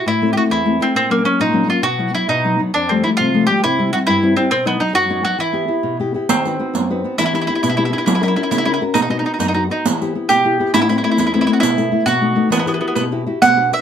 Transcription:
0.06 A2 E4
0.22 A3 C4 E4
0.33 A3 C4 G4
0.37 E4 F#4
0.50 E2 E4
0.66 A3 C4 E4
0.80 A3 C4 E4
0.95 A#2 C4
1.10 F#3 A#3 C#4
1.24 F#3 A#3 C#4
1.40 A#2 D#4
1.53 F#3 A#3 C#4
1.67 F#3 A#3 C#4 F4
1.82 B2 F#4
1.98 F#3 B3 E4
2.13 F#3 B3 E4
2.28 B2 D#4
2.45 F#3 B3 D#4
2.59 F#3 B3 D#4
2.74 F2 D4
2.89 F3 G3 A3 C4
3.04 F3 G3 A3 E4
3.17 C3 F4
3.34 F3 G3 A3
3.47 F3 G3 A3 G4
3.64 C3 E4
3.79 G3 C4 E4
3.93 G3 C4 E4 F#4
4.07 G2 E4
4.23 G3 C4 E4
4.37 G3 C4 E4
4.51 B2 C4
4.65 F#3 B3 D#4
4.79 F#3 B3 D#4
4.93 F#2 F#4
5.10 F#3 B3 D#4
5.24 F#3 B3 D#4 F#4
5.39 E3 E4
5.53 B3 E4 G4
5.68 B3 E4 G4
5.83 B2
6.00 B3 E4 G4
6.14 B3 E4 G4
6.29 D#3 C4, riq
6.45 D#4 F#4 B4, riq
6.59 D#4 F#4 B4
6.74 F#2, riq
6.90 D#4 F#4 B4
7.04 B3 D#4 F#4
7.18 E3 E4, riq
7.26 E4
7.33 B3 E4 G4, riq
7.41 E4
7.47 B3 E4 G4
7.55 E4
7.63 B2 E4, riq
7.69 E4
7.77 B3 E4 G4
7.85 E4
7.93 B3 E4 G4
7.98 E4
8.06 F#3 E4, riq
8.15 E4
8.21 C#4 E4 F#4 A#4, riq
8.28 E4
8.36 C#4 E4 F#4 A#4
8.43 E4
8.51 C#3 E4, riq
8.58 E4
8.65 C#4 E4 F#4 A#4
8.74 E4
8.81 C#4 F#4 A#4
8.94 B2 D#4, riq
9.02 D#4
9.09 B3 D#4 F#4
9.19 D#4
9.25 B3 D#4 F#4
9.34 D#4
9.39 F#2 D#4, riq
9.48 D#4
9.54 B3 D#4 F#4
9.70 B3 D#4 F#4
9.86 E3, riq
10.01 B3 E4 G4, riq
10.15 B3 E4 G4
10.29 B2 G4, riq
10.45 B3 E4 G4
10.60 B3 E4 G4
10.74 A2 E4, riq
10.82 E4
10.89 A3 B3 C4 E4, riq
10.98 E4
11.03 A3 B3 C4 E4
11.11 E4
11.17 E2 E4, riq
11.27 E4
11.34 A3 B3 C4 E4
11.41 E4
11.47 A3 B3 C4 E4
11.53 F#4
11.60 B2 E4, riq
11.77 A3 B3 E4, riq
11.92 A3 B3 E4
12.06 B2 F#4, riq
12.21 A3 B3 D#4
12.36 A3 B3 D#4
12.50 E3 B3, riq
12.59 B3
12.66 B3 E4 F#4 G4, riq
12.74 B3
12.81 B3 E4 F#4 G4
12.88 B3
12.95 B2 B3, riq
13.12 E4 F#4 G4
13.26 E4 F#4 G4
13.42 B2 F#5, riq
13.56 D4 F#4 B4
13.72 D4 F#4 B4 E5, riq

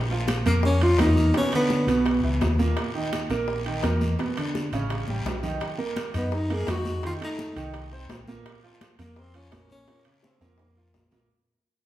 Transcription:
Already playing: A#1
0.11 F3 F4, high conga
0.28 high bongo, high conga, high timbale, low timbale, short guiro
0.46 F2 A#3 A#4, high bongo, high conga, high timbale, short guiro
0.63 C#4, high bongo, high conga, long guiro
0.81 F3 F4, high bongo, high conga, high timbale
0.98 E2 A#3 D#4 A#4, high bongo, low bongo, high conga, high timbale, low timbale, short guiro
1.16 high bongo, high conga, short guiro
1.34 B2 B3 C#4, high bongo, high timbale, long guiro
1.52 D3 B3 D4, high bongo, high conga, high timbale
1.70 high bongo, high conga, low timbale, short guiro
1.87 B1 B2 B3, high bongo, high timbale, short guiro
2.05 high bongo, high conga, high timbale, long guiro
2.23 C#2 E3 E4, high bongo, high conga
2.41 D#2, high bongo, low bongo, high conga, high timbale, low timbale, short guiro
2.59 A#2 A#3, high conga, short guiro
2.77 high bongo, high conga, high timbale, long guiro
2.95 D#3 D#4, high conga
3.13 high bongo, high conga, high timbale, low timbale, short guiro
3.30 A#1 A#3 A#4, high bongo, high timbale, short guiro
3.48 high bongo, high conga, long guiro
3.66 D#3 D#4, high bongo, high conga, high timbale
3.83 E2 A#3 A#4, high bongo, low bongo, high conga, high timbale, low timbale, short guiro
4.01 high bongo, high conga, short guiro
4.19 B2 B3, high bongo, high conga, high timbale, long guiro
4.37 D3 D4, high bongo, high conga, high timbale
4.55 high bongo, high conga, low timbale, short guiro
4.72 A1 C#3 C#4, high bongo, high timbale, short guiro
4.90 high bongo, high conga, high timbale, long guiro
5.08 A1 G3 G4, high bongo, high conga
5.25 B1, high bongo, low bongo, high conga, high timbale, low timbale, short guiro
5.43 D#3 D#4, low conga, short guiro
5.60 high bongo, high conga, high timbale, long guiro
5.78 A#3 A#4, high conga
5.96 high bongo, high conga, high timbale, low timbale, short guiro
6.14 F#2 B3 D#4 D#5, high bongo, high conga, high timbale, short guiro
6.32 D#4, high bongo, high conga, long guiro
6.50 A#3 G#4 A#4, high bongo, high conga, high timbale
6.67 F2 D#4 F#4 D#5, high bongo, low bongo, high conga, high timbale, low timbale, short guiro
6.85 high bongo, high conga, short guiro
7.03 D#3 D#4 F4, high bongo, high conga, high timbale, long guiro
7.21 A3 D#4 A4, high bongo, high conga, high timbale
7.38 high bongo, high conga, low timbale, short guiro
7.56 C2 D#3 D#4, high bongo, high timbale, short guiro
7.74 high bongo, high conga, high timbale, long guiro
7.91 C4 C5, high bongo, high conga
8.09 A#1, high bongo, low bongo, high conga, high timbale, low timbale, short guiro
8.28 A#2 A#3, high conga, short guiro
8.46 high bongo, high conga, high timbale, long guiro
8.63 F3 F4, high conga
8.81 high bongo, high conga, high timbale, low timbale, short guiro
8.99 F2 A#3 A#4, high bongo, high timbale, short guiro
9.16 C4, high bongo, high conga, long guiro
9.34 F3 C#4 F4, high bongo, high conga, high timbale
9.52 A#1 A#3 A#4, high bongo, low bongo, high conga, high timbale, low timbale, short guiro
9.70 C#4, high bongo, high conga, short guiro
9.88 A#2 A#3, high bongo, high timbale, long guiro
10.05 C#3 C#4, high bongo, high conga, high timbale
10.23 C4, high bongo, high conga, high timbale, short guiro
10.41 F2 A#2 A#3, high bongo, high timbale, short guiro
10.58 A#3, high bongo, high timbale, long guiro
10.76 F3 F4, high bongo, high conga
10.94 A#1, high bongo, low bongo, high conga, low timbale, short guiro
11.11 A#2 A#3, high conga, low timbale, short guiro

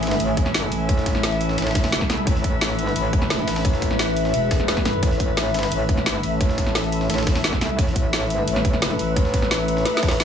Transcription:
Already playing: A1 A3 E4 A4 E5 G#5
0.03 snare, open hi-hat, ride
0.07 snare, ride
0.11 snare, ride
0.20 A1, closed hi-hat, ride
0.37 kick, closed hi-hat, ride
0.46 snare
0.54 snare, closed hi-hat, ride
0.63 ride
0.72 A1, open hi-hat, ride
0.84 B5
0.89 kick, closed hi-hat, ride
0.98 snare
1.06 kick, snare, closed hi-hat, ride
1.15 snare
1.23 snare, closed hi-hat, ride
1.32 ride
1.41 open hi-hat, ride
1.49 snare
1.58 A1, snare, closed hi-hat, ride
1.62 snare, ride
1.67 snare, ride
1.71 snare, ride
1.75 kick, snare, closed hi-hat, ride
1.84 snare, ride
1.92 snare, closed hi-hat, ride
2.01 kick, snare
2.10 C2, snare, open hi-hat, ride
2.27 A1 B4, kick, closed hi-hat, ride
2.36 snare
2.44 A1, kick, closed hi-hat, ride
2.61 snare, closed hi-hat, ride
2.70 snare
2.79 open hi-hat, ride
2.87 snare
2.96 A1, closed hi-hat, ride
3.13 kick, closed hi-hat, ride
3.22 snare
3.30 snare, closed hi-hat, ride
3.39 ride
3.48 A1, snare, open hi-hat, ride
3.56 snare, ride
3.65 kick, closed hi-hat, ride
3.73 snare
3.82 kick, snare, closed hi-hat, ride
3.91 snare
3.99 snare, closed hi-hat, ride
4.08 ride
4.17 open hi-hat, ride
4.25 snare
4.34 E1, closed hi-hat, ride
4.51 kick, snare, closed hi-hat, ride
4.60 snare
4.68 snare, closed hi-hat, ride
4.77 kick, snare, ride
4.85 snare, open hi-hat, ride
5.03 A1 A4, kick, closed hi-hat, ride
5.11 snare
5.20 A1, kick, closed hi-hat, ride
5.37 snare, closed hi-hat, ride
5.46 snare
5.54 snare, open hi-hat, ride
5.59 snare, ride
5.63 snare, ride
5.72 A1, closed hi-hat, ride
5.89 kick, closed hi-hat, ride
5.98 snare
6.06 snare, closed hi-hat, ride
6.15 ride
6.23 A1, open hi-hat, ride
6.41 kick, closed hi-hat, ride
6.49 snare
6.58 kick, snare, closed hi-hat, ride
6.67 snare
6.75 snare, closed hi-hat, ride
6.84 ride
6.92 open hi-hat, ride
7.01 snare
7.10 A1, snare, closed hi-hat, ride
7.14 snare, ride
7.18 snare, ride
7.23 snare, ride
7.27 kick, snare, closed hi-hat, ride
7.36 snare, ride
7.44 snare, closed hi-hat, ride
7.53 kick, snare
7.61 C2, snare, open hi-hat, ride
7.79 A1 B4, kick, closed hi-hat, ride
7.87 snare
7.96 A1, kick, closed hi-hat, ride
8.13 snare, closed hi-hat, ride
8.22 snare
8.30 open hi-hat, ride
8.47 A1, closed hi-hat, ride
8.56 snare
8.65 kick, closed hi-hat, ride
8.73 snare
8.82 snare, closed hi-hat, ride
8.91 ride
8.99 A1, open hi-hat, ride
9.16 kick, closed hi-hat, ride
9.25 snare
9.34 kick, snare, closed hi-hat, ride
9.42 snare
9.51 snare, closed hi-hat, ride
9.60 ride
9.68 open hi-hat, ride
9.77 snare
9.85 snare, closed hi-hat, ride
9.97 snare
10.03 A1, kick, snare, closed hi-hat, ride
10.08 snare
10.11 snare, ride
10.20 snare, closed hi-hat, ride

